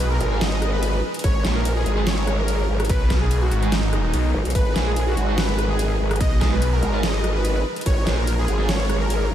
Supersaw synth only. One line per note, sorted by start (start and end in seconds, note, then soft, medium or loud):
0.11 0.37 A#4 loud
0.41 0.68 D#5 loud
0.73 0.99 B4 loud
1.24 1.51 C#5 loud
1.56 1.73 A#4 medium
1.76 2.03 G#4 loud
2.07 2.34 C#5 loud
2.38 2.65 A#4 medium
2.90 3.17 B4 loud
3.21 3.39 G#4 medium
3.42 3.68 F#4 loud
3.72 3.99 D#4 loud
4.04 4.30 D#4 loud
4.55 4.82 B4 loud
4.87 5.04 G#4 medium
5.07 5.34 F#4 loud
5.38 5.65 B4 loud
5.69 5.96 G#4 loud
6.21 6.48 D#5 loud
6.52 6.70 B4 medium
6.73 6.99 A#4 loud
7.03 7.31 D#5 loud
7.35 7.61 B4 loud
7.86 8.13 C#5 loud
8.18 8.36 A#4 medium
8.39 8.65 G#4 loud
8.69 8.96 C#5 loud
9.01 9.27 A#4 loud